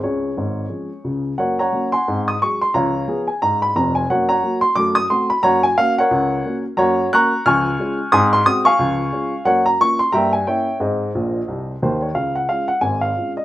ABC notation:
X:1
M:4/4
L:1/8
Q:"Swing" 1/4=178
K:Db
V:1 name="Upright piano"
[Ad]6- [Ad] z | [K:F#] [Acf] [cfa]2 [fg^b]2 d' c' b | [cea]3 g a b a g | [Acf] [cfa]2 ^b =d' ^d' =c' =b |
[cfa] g e [Acf]4 z | [K:Db] [dgb]2 [bd'g']2 [ad'f']4 | [ac'e'] c' e' [fad']4- [fad'] | [Bdg] b d' c' [=e=gb] a [deg]2 |
[Ace]6 c d | f g f g a f2 e |]
V:2 name="Upright piano" clef=bass
[D,,D,]2 [A,,,A,,]2 [F,A,D]2 [D,,D,]2 | [K:F#] [F,,A,]2 [F,A,C]2 [G,,^B,]2 [F,G,G]2 | [C,,E,]2 [E,B,G]2 G,,2 [E,,,E,,]2 | [F,,A,]2 [F,A,F]2 [F,,=A,]2 [A,=CF]2 |
[F,,A,]2 [A,CF]2 C,,2 [A,CF]2 | [K:Db] [G,,B,]2 [B,DG]2 [D,,F,]2 [A,DF]2 | [A,,C]2 [A,CG]2 [D,,F,]2 [A,DF]2 | [G,,B,]2 [B,DF]2 [=G,,B,]2 [B,D=E]2 |
[A,,C]2 [B,,,B,,]2 [C,,C,]2 [E,,E,]2 | [D,,D,]2 [A,DF]2 [A,,,A,,]2 [A,DF]2 |]